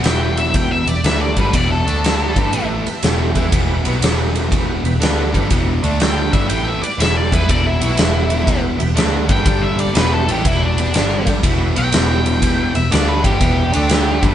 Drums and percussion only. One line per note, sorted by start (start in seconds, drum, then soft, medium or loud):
0.04 snare loud
0.04 ride medium
0.37 ride medium
0.54 kick loud
0.54 ride medium
0.87 ride medium
1.04 snare medium
1.04 ride medium
1.36 kick medium
1.36 ride medium
1.53 kick loud
1.53 ride medium
1.88 ride medium
2.04 snare loud
2.04 ride medium
2.36 kick loud
2.36 ride medium
2.53 ride medium
2.86 ride medium
3.03 snare loud
3.03 ride medium
3.35 kick medium
3.35 ride medium
3.52 kick loud
3.52 ride medium
3.85 ride medium
4.02 snare loud
4.02 ride loud
4.35 ride medium
4.52 kick medium
4.52 ride medium
4.85 ride medium
5.02 snare loud
5.02 ride medium
5.34 kick medium
5.34 ride medium
5.50 kick loud
5.50 ride medium
5.84 ride medium
6.00 snare loud
6.00 ride medium
6.33 kick loud
6.33 ride medium
6.50 ride medium
6.83 ride medium
7.00 snare medium
7.00 ride medium
7.32 kick medium
7.32 ride medium
7.49 kick medium
7.49 ride medium
7.81 ride medium
7.97 snare loud
7.97 ride medium
8.30 ride medium
8.47 kick medium
8.47 ride medium
8.80 ride medium
8.97 snare medium
8.97 ride medium
9.29 kick medium
9.29 ride medium
9.46 kick loud
9.46 ride medium
9.79 ride medium
9.95 snare loud
9.95 ride medium
10.29 ride medium
10.45 kick loud
10.45 ride medium
10.78 ride medium
10.94 snare loud
10.94 ride loud
11.27 kick medium
11.27 ride medium
11.43 kick loud
11.43 ride loud
11.76 ride medium
11.92 snare loud
11.92 ride medium
12.26 ride medium
12.42 kick medium
12.42 ride medium
12.75 ride medium
12.92 snare loud
12.92 ride medium
13.24 kick medium
13.24 ride medium
13.41 kick loud
13.41 ride medium
13.73 ride medium
13.89 snare loud
13.89 ride medium
14.23 kick loud
14.23 ride medium